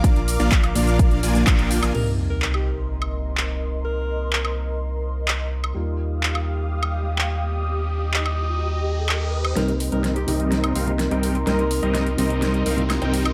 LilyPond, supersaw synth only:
\new Staff \with { instrumentName = "Supersaw synth" } { \time 4/4 \key c \minor \tempo 4 = 126 <bes d' f' d'' f''>16 r8 <bes d' f' d'' f''>8 r16 <bes d' f' d'' f''>4 <bes d' f' d'' aes''>8 f'8. <bes d' f' d'' aes''>16 | r1 | r1 | r1 |
r1 | <g c' ees' bes' ees''>16 r8 <g c' ees' bes' ees''>8 r16 <g c' ees' bes' ees''>4 <g c' ees' bes' f''>16 r8 <g c' ees' bes' g''>8 r16 | <g c' ees' bes' ees''>16 r8 <g c' ees' bes' ees''>8 r16 <g c' ees' bes' ees''>4 <g c' ees' bes' f''>16 r8 <g c' ees' bes' g''>8 r16 | }